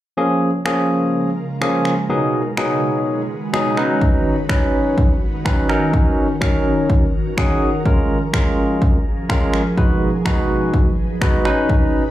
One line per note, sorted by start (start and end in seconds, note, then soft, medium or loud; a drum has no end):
0.17 2.07 C#3 medium
0.17 0.49 F3 medium
0.17 2.07 G#3 medium
0.17 0.49 A#3 medium
0.17 0.49 C#4 medium
0.17 2.07 F4 medium
0.17 0.49 G#4 loud
0.17 2.08 A#4 medium
0.65 1.29 F3 medium
0.65 1.29 A#3 medium
0.65 1.29 C#4 medium
0.65 1.29 G#4 loud
0.65 finger snap loud
1.61 1.93 F3 medium
1.61 1.93 A#3 medium
1.61 1.93 C#4 medium
1.61 1.93 G#4 loud
1.61 finger snap loud
1.85 finger snap medium
2.09 2.41 B2 medium
2.09 7.82 D#3 medium
2.09 2.41 F#3 medium
2.09 3.76 G#3 medium
2.09 2.41 B3 medium
2.09 2.41 D#4 medium
2.09 7.82 F#4 medium
2.09 2.41 G#4 loud
2.09 5.66 B4 medium
2.57 3.21 B2 medium
2.57 3.21 F#3 medium
2.57 3.21 B3 medium
2.57 3.21 D#4 medium
2.57 3.21 G#4 loud
2.57 finger snap loud
3.53 3.77 B2 medium
3.53 3.76 F#3 medium
3.53 3.77 B3 medium
3.53 3.76 D#4 medium
3.53 3.78 G#4 loud
3.53 finger snap loud
3.77 4.35 F#3 medium
3.77 4.35 C#4 medium
3.77 9.74 C#4 medium
3.77 4.35 D#4 medium
3.77 4.35 B4 medium
3.77 finger snap medium
4.01 kick loud
4.49 5.13 F#3 medium
4.49 5.13 C#4 medium
4.49 5.13 D#4 medium
4.49 5.13 B4 loud
4.49 finger snap loud
4.49 kick loud
4.98 kick loud
5.45 5.68 F#3 loud
5.45 5.68 C#4 medium
5.45 5.68 D#4 medium
5.45 5.70 B4 loud
5.45 finger snap loud
5.45 kick loud
5.69 6.27 F#3 medium
5.69 6.27 C#4 medium
5.69 6.27 D#4 medium
5.69 6.27 A#4 loud
5.69 9.74 A#4 medium
5.69 finger snap medium
5.94 kick loud
6.41 7.05 F#3 medium
6.41 7.05 C#4 medium
6.41 7.05 D#4 medium
6.41 7.05 A#4 loud
6.41 finger snap loud
6.41 kick loud
6.90 kick loud
7.37 7.69 F#3 medium
7.37 7.69 C#4 medium
7.37 7.69 D#4 medium
7.37 7.69 G#4 loud
7.37 7.82 F#5 medium
7.37 finger snap loud
7.37 kick loud
7.85 9.76 F3 medium
7.85 8.17 G#3 medium
7.85 8.17 C#4 medium
7.85 8.17 F4 medium
7.85 11.42 G#4 medium
7.85 8.17 A#4 loud
7.85 kick loud
8.33 8.97 G#3 medium
8.33 8.97 C#4 medium
8.33 8.97 F4 medium
8.33 8.97 A#4 loud
8.33 finger snap loud
8.33 kick loud
8.82 kick loud
9.29 9.61 G#3 loud
9.29 9.61 C#4 medium
9.29 9.61 F4 medium
9.29 9.61 A#4 loud
9.29 finger snap loud
9.29 kick loud
9.54 finger snap medium
9.77 10.09 B2 medium
9.77 11.44 B2 medium
9.77 12.11 F#3 medium
9.77 10.09 G#3 medium
9.77 10.09 D#4 medium
9.77 11.44 D#4 medium
9.77 10.09 F#4 medium
9.77 10.09 B4 loud
9.77 12.11 B4 medium
9.77 kick loud
10.25 10.89 B2 medium
10.25 10.89 G#3 medium
10.25 10.89 D#4 medium
10.25 10.89 F#4 medium
10.25 10.89 B4 loud
10.25 finger snap loud
10.25 kick loud
10.74 kick loud
11.21 11.45 B2 loud
11.21 11.45 G#3 medium
11.21 11.44 D#4 medium
11.21 11.46 F#4 medium
11.21 11.44 B4 loud
11.21 finger snap loud
11.21 kick loud
11.45 12.03 F#3 medium
11.45 12.03 C#4 medium
11.45 12.11 C#4 medium
11.45 12.11 D#4 medium
11.45 12.03 D#4 medium
11.45 12.03 B4 medium
11.45 finger snap medium
11.70 kick loud